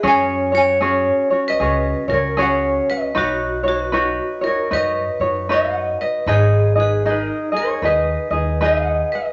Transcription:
0.03 1.05 F#2 loud
0.03 0.52 C#4 medium
0.03 0.52 F#4 medium
0.03 0.52 G#4 medium
0.03 0.51 C#5 loud
0.08 0.51 C#5 medium
0.08 0.56 G#5 loud
0.52 0.80 C#4 soft
0.52 0.80 F#4 soft
0.52 0.81 C#5 medium
0.52 1.42 C#5 medium
0.57 1.49 F#5 loud
0.81 1.30 C#4 medium
0.81 1.30 F#4 medium
0.81 1.30 G#4 medium
0.81 1.29 C#5 medium
1.30 1.59 C#4 soft
1.30 1.60 F#4 soft
1.30 1.60 C#5 medium
1.48 2.06 B4 medium
1.48 2.13 D#5 medium
1.60 1.91 C#2 medium
1.60 2.08 C#4 medium
1.60 2.08 F#4 medium
1.60 2.09 G#4 medium
1.60 2.07 C#5 medium
2.08 2.78 C#2 medium
2.08 2.36 C#4 soft
2.08 2.37 F#4 soft
2.08 2.36 A#4 medium
2.08 2.37 C#5 medium
2.13 2.38 C#5 medium
2.37 3.15 C#4 medium
2.37 3.15 F#4 medium
2.37 3.14 G#4 medium
2.37 3.15 C#5 medium
2.37 2.84 C#5 medium
2.43 2.90 F#5 medium
2.90 3.15 B4 medium
2.90 3.19 D#5 medium
3.15 4.17 B1 medium
3.15 3.64 D#4 medium
3.15 3.63 F#4 medium
3.15 3.62 F#4 medium
3.15 3.64 B4 medium
3.15 3.62 C#5 medium
3.19 3.68 C#5 medium
3.63 3.92 D#4 soft
3.63 3.92 F#4 soft
3.63 3.92 C#5 medium
3.68 4.40 F#4 medium
3.68 4.47 B4 medium
3.92 4.42 D#4 medium
3.92 4.42 F#4 medium
3.92 4.42 B4 medium
3.92 4.40 C#5 medium
4.41 4.70 D#4 soft
4.41 4.70 F#4 soft
4.41 4.70 A#4 medium
4.41 4.71 C#5 soft
4.47 4.74 C#5 medium
4.71 5.03 F#2 medium
4.71 5.20 D#4 medium
4.71 5.20 F#4 medium
4.71 5.20 B4 medium
4.71 5.46 B4 medium
4.71 5.19 C#5 medium
4.71 5.53 D#5 medium
5.20 5.89 F#2 medium
5.20 5.48 D#4 soft
5.20 5.49 F#4 soft
5.20 5.50 C#5 medium
5.49 6.27 D#4 medium
5.49 6.28 F#4 medium
5.49 6.27 B4 medium
5.49 6.28 C#5 medium
5.49 5.96 D#5 medium
5.54 6.01 F#5 medium
6.01 6.27 B4 medium
6.01 6.30 D#5 medium
6.26 7.28 G#1 medium
6.26 6.76 D#4 medium
6.26 6.75 G#4 medium
6.26 6.74 G#4 medium
6.26 6.76 B4 medium
6.26 6.74 D#5 medium
6.32 6.80 C#5 medium
6.75 7.04 D#4 soft
6.75 7.05 G#4 soft
6.75 7.05 D#5 medium
6.80 7.05 G#4 medium
6.80 7.08 B4 medium
7.05 7.53 D#4 medium
7.05 7.52 G#4 medium
7.05 7.51 D#5 medium
7.10 7.22 B4 medium
7.22 7.58 A#4 medium
7.52 7.82 D#4 soft
7.52 7.82 G#4 soft
7.52 7.82 D#5 medium
7.57 7.83 A#4 medium
7.57 7.86 C#5 medium
7.82 8.14 D#2 medium
7.82 8.32 D#4 medium
7.82 8.31 G#4 medium
7.82 8.31 B4 medium
7.82 8.58 B4 medium
7.82 8.30 D#5 medium
7.87 8.65 D#5 medium
8.30 9.00 D#2 medium
8.30 8.60 D#4 soft
8.30 8.60 G#4 soft
8.30 8.60 D#5 medium
8.61 9.33 D#4 medium
8.61 9.33 G#4 medium
8.61 9.33 B4 medium
8.61 9.33 D#5 medium
8.65 9.08 D#5 medium
8.65 9.13 F#5 medium
9.12 9.33 B4 medium
9.12 9.33 D#5 medium

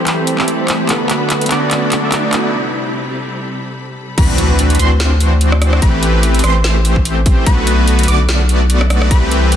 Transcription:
0.00 0.87 E3 medium
0.00 0.87 G3 medium
0.00 0.35 A3 medium
0.00 0.87 A3 medium
0.00 0.35 C4 medium
0.00 0.87 C4 medium
0.00 0.36 E4 medium
0.00 0.36 G4 medium
0.00 0.87 G4 medium
0.00 4.14 A4 medium
0.00 0.37 C5 medium
0.00 0.87 C5 loud
0.00 4.14 B5 medium
0.00 riser medium
0.07 clap medium
0.07 closed hi-hat medium
0.27 closed hi-hat medium
0.36 0.86 A3 medium
0.36 0.86 C4 medium
0.36 0.87 E4 medium
0.36 0.87 G4 medium
0.36 0.88 D5 medium
0.36 clap medium
0.48 closed hi-hat medium
0.68 clap medium
0.68 closed hi-hat medium
0.87 1.48 D3 medium
0.87 2.52 F#3 medium
0.87 1.47 A3 medium
0.87 1.48 A3 medium
0.87 1.48 B3 medium
0.87 2.52 D4 medium
0.87 1.48 D4 medium
0.87 1.48 F#4 medium
0.87 1.49 F#4 medium
0.87 1.48 B4 medium
0.87 1.49 B4 medium
0.87 clap medium
0.87 closed hi-hat medium
1.10 clap medium
1.10 closed hi-hat medium
1.30 clap medium
1.30 closed hi-hat medium
1.41 closed hi-hat soft
1.46 1.99 A3 medium
1.46 2.00 B3 medium
1.46 closed hi-hat medium
1.50 2.51 D3 medium
1.50 2.51 A3 medium
1.50 2.51 B3 medium
1.50 2.00 D4 medium
1.50 2.51 F#4 medium
1.50 2.01 F#4 medium
1.50 2.51 D5 loud
1.50 2.01 D5 medium
1.50 clap medium
1.50 closed hi-hat medium
1.71 clap medium
1.71 closed hi-hat medium
1.92 clap medium
1.92 closed hi-hat medium
2.01 2.50 A3 medium
2.01 2.51 B3 medium
2.01 2.51 D4 medium
2.01 2.52 F#4 medium
2.05 2.52 E5 medium
2.12 clap medium
2.12 closed hi-hat medium
2.33 clap medium
2.33 closed hi-hat medium
2.53 4.16 C3 medium
2.53 4.16 G3 medium
2.53 4.16 C4 medium
4.18 4.77 D2 loud
4.18 4.77 E3 medium
4.18 4.77 C4 medium
4.18 4.77 D4 medium
4.18 4.77 F#4 medium
4.18 4.77 B4 medium
4.18 4.77 B5 medium
4.18 kick loud
4.18 closed hi-hat medium
4.18 crash loud
4.18 impact medium
4.38 closed hi-hat medium
4.59 closed hi-hat medium
4.70 closed hi-hat medium
4.75 closed hi-hat medium
4.79 5.80 D2 loud
4.79 5.80 E3 loud
4.79 5.80 C4 medium
4.79 5.80 D4 medium
4.79 5.80 F#4 medium
4.79 5.80 C5 loud
4.79 5.80 C6 loud
4.79 closed hi-hat medium
5.00 snare loud
5.00 closed hi-hat medium
5.20 closed hi-hat medium
5.41 closed hi-hat medium
5.52 cross-stick medium
5.62 cross-stick medium
5.62 closed hi-hat medium
5.73 cross-stick medium
5.82 6.42 A1 loud
5.82 6.41 E3 medium
5.82 6.41 A3 medium
5.82 6.41 C4 medium
5.82 6.41 G4 medium
5.82 6.41 B4 medium
5.82 6.42 B5 medium
5.82 kick loud
5.82 closed hi-hat medium
6.03 closed hi-hat medium
6.23 closed hi-hat medium
6.34 closed hi-hat soft
6.39 closed hi-hat medium
6.44 7.45 A1 loud
6.44 7.44 E3 loud
6.44 7.44 A3 medium
6.44 7.44 C4 medium
6.44 7.44 G4 medium
6.44 7.44 C5 loud
6.44 7.44 C6 loud
6.44 cross-stick medium
6.44 closed hi-hat medium
6.64 snare loud
6.64 closed hi-hat medium
6.85 closed hi-hat medium
6.96 kick medium
7.05 closed hi-hat medium
7.26 kick loud
7.26 closed hi-hat medium
7.46 8.06 B1 loud
7.46 8.06 D3 medium
7.46 8.06 A3 medium
7.46 8.06 B3 medium
7.46 8.06 F#4 medium
7.46 8.06 B4 medium
7.46 8.06 B5 medium
7.46 kick loud
7.46 closed hi-hat medium
7.67 closed hi-hat medium
7.88 closed hi-hat medium
7.99 closed hi-hat soft
8.03 closed hi-hat medium
8.08 9.12 B1 loud
8.08 9.09 D3 medium
8.08 9.09 A3 medium
8.08 9.09 B3 medium
8.08 9.09 F#4 medium
8.08 9.09 D5 loud
8.08 9.09 D6 loud
8.08 closed hi-hat medium
8.29 snare loud
8.29 closed hi-hat medium
8.49 closed hi-hat medium
8.70 closed hi-hat medium
8.81 cross-stick medium
8.90 cross-stick medium
8.90 closed hi-hat medium
9.02 cross-stick medium
9.11 9.56 C2 loud
9.11 9.56 E3 medium
9.11 9.56 A3 medium
9.11 9.56 C4 medium
9.11 9.56 G4 medium
9.11 9.56 B4 medium
9.11 9.56 B5 medium
9.11 kick loud
9.11 closed hi-hat medium
9.31 closed hi-hat medium
9.52 closed hi-hat medium

